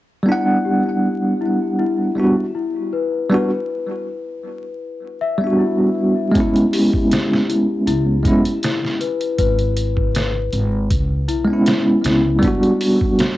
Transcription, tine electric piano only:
0, 0, Header, 1, 2, 480
1, 0, Start_track
1, 0, Tempo, 759494
1, 174, Time_signature, 4, 2, 24, 8
1, 8452, End_track
2, 0, Start_track
2, 0, Title_t, "Tine electric piano"
2, 0, Program_c, 0, 4
2, 145, Note_on_c, 0, 55, 73
2, 163, Note_on_c, 0, 59, 64
2, 182, Note_on_c, 0, 62, 71
2, 201, Note_on_c, 0, 78, 83
2, 1333, Note_off_c, 0, 55, 0
2, 1342, Note_off_c, 0, 59, 0
2, 1351, Note_off_c, 0, 62, 0
2, 1360, Note_on_c, 0, 55, 73
2, 1361, Note_off_c, 0, 78, 0
2, 1369, Note_on_c, 0, 59, 71
2, 1378, Note_on_c, 0, 62, 67
2, 1388, Note_on_c, 0, 66, 82
2, 1533, Note_off_c, 0, 55, 0
2, 1537, Note_off_c, 0, 59, 0
2, 1542, Note_off_c, 0, 62, 0
2, 1547, Note_off_c, 0, 66, 0
2, 2083, Note_on_c, 0, 55, 78
2, 2092, Note_on_c, 0, 59, 71
2, 2101, Note_on_c, 0, 62, 76
2, 2110, Note_on_c, 0, 66, 90
2, 2196, Note_off_c, 0, 55, 0
2, 2200, Note_off_c, 0, 59, 0
2, 2204, Note_off_c, 0, 62, 0
2, 2209, Note_off_c, 0, 66, 0
2, 3401, Note_on_c, 0, 55, 73
2, 3420, Note_on_c, 0, 59, 60
2, 3438, Note_on_c, 0, 62, 60
2, 3456, Note_on_c, 0, 66, 75
2, 3977, Note_off_c, 0, 55, 0
2, 3986, Note_off_c, 0, 59, 0
2, 3991, Note_on_c, 0, 56, 82
2, 3995, Note_off_c, 0, 62, 0
2, 4004, Note_off_c, 0, 66, 0
2, 4010, Note_on_c, 0, 59, 71
2, 4027, Note_on_c, 0, 61, 74
2, 4046, Note_on_c, 0, 64, 84
2, 5176, Note_off_c, 0, 56, 0
2, 5185, Note_off_c, 0, 59, 0
2, 5194, Note_off_c, 0, 61, 0
2, 5202, Note_on_c, 0, 56, 83
2, 5203, Note_off_c, 0, 64, 0
2, 5211, Note_on_c, 0, 59, 72
2, 5221, Note_on_c, 0, 61, 71
2, 5231, Note_on_c, 0, 64, 85
2, 5374, Note_off_c, 0, 56, 0
2, 5379, Note_off_c, 0, 59, 0
2, 5383, Note_off_c, 0, 61, 0
2, 5389, Note_off_c, 0, 64, 0
2, 7234, Note_on_c, 0, 56, 69
2, 7253, Note_on_c, 0, 59, 68
2, 7270, Note_on_c, 0, 61, 70
2, 7289, Note_on_c, 0, 64, 82
2, 7813, Note_off_c, 0, 56, 0
2, 7823, Note_off_c, 0, 59, 0
2, 7829, Note_on_c, 0, 55, 80
2, 7831, Note_off_c, 0, 61, 0
2, 7841, Note_off_c, 0, 64, 0
2, 7849, Note_on_c, 0, 59, 74
2, 7867, Note_on_c, 0, 62, 72
2, 7886, Note_on_c, 0, 66, 85
2, 8452, Note_off_c, 0, 55, 0
2, 8452, Note_off_c, 0, 59, 0
2, 8452, Note_off_c, 0, 62, 0
2, 8452, Note_off_c, 0, 66, 0
2, 8452, End_track
0, 0, End_of_file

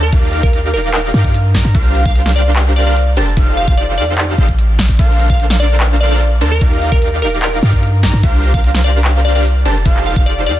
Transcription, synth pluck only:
0, 0, Header, 1, 2, 480
1, 0, Start_track
1, 0, Tempo, 405405
1, 149, Time_signature, 4, 2, 24, 8
1, 12547, End_track
2, 0, Start_track
2, 0, Title_t, "Synth pluck"
2, 0, Program_c, 0, 84
2, 32, Note_on_c, 0, 70, 94
2, 163, Note_off_c, 0, 70, 0
2, 511, Note_on_c, 0, 70, 92
2, 845, Note_off_c, 0, 70, 0
2, 871, Note_on_c, 0, 70, 92
2, 1007, Note_off_c, 0, 70, 0
2, 1108, Note_on_c, 0, 70, 95
2, 1782, Note_off_c, 0, 70, 0
2, 2435, Note_on_c, 0, 77, 95
2, 2565, Note_off_c, 0, 77, 0
2, 2791, Note_on_c, 0, 74, 95
2, 2927, Note_off_c, 0, 74, 0
2, 3270, Note_on_c, 0, 74, 94
2, 3349, Note_off_c, 0, 74, 0
2, 3394, Note_on_c, 0, 74, 78
2, 3468, Note_off_c, 0, 74, 0
2, 4227, Note_on_c, 0, 77, 89
2, 4308, Note_off_c, 0, 77, 0
2, 4351, Note_on_c, 0, 77, 81
2, 4427, Note_off_c, 0, 77, 0
2, 4469, Note_on_c, 0, 74, 92
2, 4686, Note_off_c, 0, 74, 0
2, 4708, Note_on_c, 0, 74, 92
2, 5073, Note_off_c, 0, 74, 0
2, 6273, Note_on_c, 0, 77, 91
2, 6404, Note_off_c, 0, 77, 0
2, 6626, Note_on_c, 0, 74, 97
2, 6765, Note_off_c, 0, 74, 0
2, 7111, Note_on_c, 0, 74, 95
2, 7190, Note_off_c, 0, 74, 0
2, 7234, Note_on_c, 0, 74, 80
2, 7308, Note_off_c, 0, 74, 0
2, 7714, Note_on_c, 0, 70, 89
2, 7844, Note_off_c, 0, 70, 0
2, 8191, Note_on_c, 0, 70, 94
2, 8526, Note_off_c, 0, 70, 0
2, 8550, Note_on_c, 0, 70, 94
2, 8687, Note_off_c, 0, 70, 0
2, 8794, Note_on_c, 0, 70, 91
2, 9465, Note_off_c, 0, 70, 0
2, 10113, Note_on_c, 0, 77, 92
2, 10244, Note_off_c, 0, 77, 0
2, 10470, Note_on_c, 0, 74, 97
2, 10607, Note_off_c, 0, 74, 0
2, 10949, Note_on_c, 0, 74, 93
2, 11028, Note_off_c, 0, 74, 0
2, 11073, Note_on_c, 0, 74, 78
2, 11147, Note_off_c, 0, 74, 0
2, 11915, Note_on_c, 0, 77, 89
2, 11991, Note_off_c, 0, 77, 0
2, 12035, Note_on_c, 0, 77, 80
2, 12109, Note_off_c, 0, 77, 0
2, 12148, Note_on_c, 0, 74, 92
2, 12366, Note_off_c, 0, 74, 0
2, 12390, Note_on_c, 0, 74, 98
2, 12547, Note_off_c, 0, 74, 0
2, 12547, End_track
0, 0, End_of_file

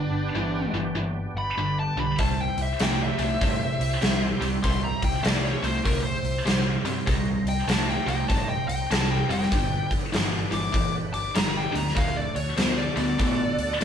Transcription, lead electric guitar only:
0, 0, Header, 1, 2, 480
1, 0, Start_track
1, 0, Key_signature, 1, "major"
1, 0, Tempo, 611621
1, 1719, Time_signature, 4, 2, 24, 8
1, 10863, End_track
2, 0, Start_track
2, 0, Title_t, "Lead electric guitar"
2, 0, Program_c, 0, 29
2, 0, Note_on_c, 0, 62, 90
2, 570, Note_off_c, 0, 62, 0
2, 1083, Note_on_c, 0, 83, 89
2, 1392, Note_off_c, 0, 83, 0
2, 1409, Note_on_c, 0, 81, 85
2, 1559, Note_off_c, 0, 81, 0
2, 1570, Note_on_c, 0, 83, 77
2, 1719, Note_off_c, 0, 83, 0
2, 1726, Note_on_c, 0, 81, 82
2, 1877, Note_off_c, 0, 81, 0
2, 1889, Note_on_c, 0, 79, 82
2, 2038, Note_off_c, 0, 79, 0
2, 2060, Note_on_c, 0, 76, 78
2, 2204, Note_off_c, 0, 76, 0
2, 2217, Note_on_c, 0, 79, 83
2, 2362, Note_off_c, 0, 79, 0
2, 2378, Note_on_c, 0, 76, 86
2, 3296, Note_off_c, 0, 76, 0
2, 3633, Note_on_c, 0, 84, 92
2, 3788, Note_off_c, 0, 84, 0
2, 3801, Note_on_c, 0, 82, 91
2, 3951, Note_off_c, 0, 82, 0
2, 3958, Note_on_c, 0, 79, 84
2, 4110, Note_off_c, 0, 79, 0
2, 4123, Note_on_c, 0, 74, 94
2, 4272, Note_off_c, 0, 74, 0
2, 4276, Note_on_c, 0, 73, 88
2, 4429, Note_off_c, 0, 73, 0
2, 4431, Note_on_c, 0, 72, 86
2, 4586, Note_off_c, 0, 72, 0
2, 4590, Note_on_c, 0, 70, 93
2, 4733, Note_off_c, 0, 70, 0
2, 4736, Note_on_c, 0, 72, 92
2, 5207, Note_off_c, 0, 72, 0
2, 5877, Note_on_c, 0, 79, 83
2, 6027, Note_off_c, 0, 79, 0
2, 6030, Note_on_c, 0, 81, 94
2, 6184, Note_off_c, 0, 81, 0
2, 6198, Note_on_c, 0, 79, 88
2, 6339, Note_off_c, 0, 79, 0
2, 6349, Note_on_c, 0, 79, 97
2, 6497, Note_off_c, 0, 79, 0
2, 6500, Note_on_c, 0, 81, 87
2, 6659, Note_off_c, 0, 81, 0
2, 6664, Note_on_c, 0, 79, 82
2, 6805, Note_off_c, 0, 79, 0
2, 6815, Note_on_c, 0, 79, 94
2, 6976, Note_off_c, 0, 79, 0
2, 6994, Note_on_c, 0, 81, 85
2, 7145, Note_off_c, 0, 81, 0
2, 7149, Note_on_c, 0, 79, 88
2, 7298, Note_off_c, 0, 79, 0
2, 7307, Note_on_c, 0, 79, 96
2, 7774, Note_off_c, 0, 79, 0
2, 8270, Note_on_c, 0, 86, 93
2, 8581, Note_off_c, 0, 86, 0
2, 8742, Note_on_c, 0, 86, 89
2, 8902, Note_off_c, 0, 86, 0
2, 8916, Note_on_c, 0, 82, 84
2, 9070, Note_off_c, 0, 82, 0
2, 9083, Note_on_c, 0, 79, 77
2, 9234, Note_off_c, 0, 79, 0
2, 9235, Note_on_c, 0, 82, 73
2, 9387, Note_on_c, 0, 77, 88
2, 9390, Note_off_c, 0, 82, 0
2, 9546, Note_off_c, 0, 77, 0
2, 9549, Note_on_c, 0, 74, 86
2, 9697, Note_off_c, 0, 74, 0
2, 9700, Note_on_c, 0, 73, 78
2, 9860, Note_off_c, 0, 73, 0
2, 9863, Note_on_c, 0, 72, 82
2, 10026, Note_off_c, 0, 72, 0
2, 10029, Note_on_c, 0, 74, 82
2, 10180, Note_off_c, 0, 74, 0
2, 10190, Note_on_c, 0, 74, 96
2, 10863, Note_off_c, 0, 74, 0
2, 10863, End_track
0, 0, End_of_file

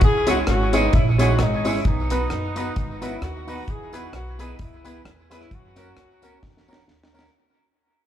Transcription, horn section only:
0, 0, Header, 1, 2, 480
1, 0, Start_track
1, 0, Tempo, 457806
1, 18, Time_signature, 4, 2, 24, 8
1, 8456, End_track
2, 0, Start_track
2, 0, Title_t, "Horn section"
2, 0, Program_c, 0, 61
2, 28, Note_on_c, 0, 68, 109
2, 37, Note_on_c, 0, 64, 78
2, 272, Note_off_c, 0, 68, 0
2, 277, Note_off_c, 0, 64, 0
2, 296, Note_on_c, 0, 66, 94
2, 305, Note_on_c, 0, 63, 75
2, 389, Note_off_c, 0, 66, 0
2, 397, Note_off_c, 0, 63, 0
2, 505, Note_on_c, 0, 66, 97
2, 511, Note_on_c, 0, 61, 86
2, 751, Note_off_c, 0, 66, 0
2, 754, Note_off_c, 0, 61, 0
2, 771, Note_on_c, 0, 63, 96
2, 784, Note_on_c, 0, 59, 76
2, 981, Note_off_c, 0, 63, 0
2, 987, Note_off_c, 0, 59, 0
2, 988, Note_on_c, 0, 64, 87
2, 990, Note_on_c, 0, 61, 68
2, 1106, Note_off_c, 0, 64, 0
2, 1108, Note_off_c, 0, 61, 0
2, 1257, Note_on_c, 0, 66, 94
2, 1267, Note_on_c, 0, 63, 79
2, 1449, Note_off_c, 0, 66, 0
2, 1455, Note_off_c, 0, 63, 0
2, 1477, Note_on_c, 0, 63, 84
2, 1484, Note_on_c, 0, 56, 71
2, 1735, Note_off_c, 0, 63, 0
2, 1739, Note_off_c, 0, 56, 0
2, 1745, Note_on_c, 0, 64, 86
2, 1750, Note_on_c, 0, 61, 76
2, 1947, Note_off_c, 0, 64, 0
2, 1949, Note_on_c, 0, 63, 96
2, 1950, Note_off_c, 0, 61, 0
2, 1958, Note_on_c, 0, 59, 74
2, 3129, Note_off_c, 0, 63, 0
2, 3133, Note_off_c, 0, 59, 0
2, 3181, Note_on_c, 0, 64, 88
2, 3185, Note_on_c, 0, 61, 74
2, 3371, Note_off_c, 0, 64, 0
2, 3373, Note_off_c, 0, 61, 0
2, 3386, Note_on_c, 0, 66, 96
2, 3394, Note_on_c, 0, 63, 78
2, 3862, Note_off_c, 0, 66, 0
2, 3866, Note_off_c, 0, 63, 0
2, 3871, Note_on_c, 0, 68, 93
2, 3872, Note_on_c, 0, 64, 84
2, 4132, Note_off_c, 0, 64, 0
2, 4132, Note_off_c, 0, 68, 0
2, 4137, Note_on_c, 0, 66, 80
2, 4140, Note_on_c, 0, 63, 73
2, 4337, Note_off_c, 0, 66, 0
2, 4345, Note_off_c, 0, 63, 0
2, 4350, Note_on_c, 0, 66, 94
2, 4353, Note_on_c, 0, 59, 73
2, 4593, Note_off_c, 0, 66, 0
2, 4595, Note_off_c, 0, 59, 0
2, 4615, Note_on_c, 0, 59, 66
2, 4618, Note_on_c, 0, 63, 82
2, 4820, Note_off_c, 0, 59, 0
2, 4823, Note_off_c, 0, 63, 0
2, 4832, Note_on_c, 0, 59, 61
2, 4832, Note_on_c, 0, 64, 83
2, 5304, Note_off_c, 0, 59, 0
2, 5304, Note_off_c, 0, 64, 0
2, 5575, Note_on_c, 0, 64, 102
2, 5585, Note_on_c, 0, 61, 78
2, 5768, Note_off_c, 0, 64, 0
2, 5773, Note_off_c, 0, 61, 0
2, 5793, Note_on_c, 0, 66, 107
2, 5802, Note_on_c, 0, 61, 81
2, 7224, Note_off_c, 0, 66, 0
2, 7229, Note_off_c, 0, 61, 0
2, 8456, End_track
0, 0, End_of_file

